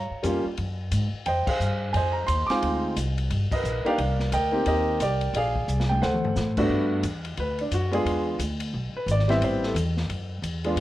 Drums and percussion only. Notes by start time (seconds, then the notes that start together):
0.23 hi-hat pedal, ride
0.57 ride
0.91 hi-hat pedal, ride
1.26 ride
1.47 kick, crash
1.60 hi-hat pedal
1.94 ride
2.28 hi-hat pedal, ride
2.50 snare, ride
2.62 ride
2.96 hi-hat pedal, ride
3.18 ride
3.30 ride
3.51 kick, crash
3.65 hi-hat pedal
3.86 ride
3.98 ride
4.20 snare
4.32 hi-hat pedal, ride
4.66 ride
5.00 hi-hat pedal, ride
5.21 ride
5.35 ride
5.56 kick
5.68 hi-hat pedal
5.80 snare
5.91 high tom
6.02 snare
6.14 mid tom
6.25 floor tom
6.36 snare, hi-hat pedal
6.57 kick, crash
7.03 hi-hat pedal, ride
7.25 ride
7.37 ride
7.59 ride
7.72 hi-hat pedal, ride
7.93 ride
8.06 ride
8.40 hi-hat pedal, ride
8.60 ride
9.08 hi-hat pedal, ride
9.19 snare
9.29 snare, ride
9.42 ride
9.63 snare
9.76 hi-hat pedal, ride
9.97 snare
10.09 ride
10.43 hi-hat pedal, ride
10.64 ride
10.77 ride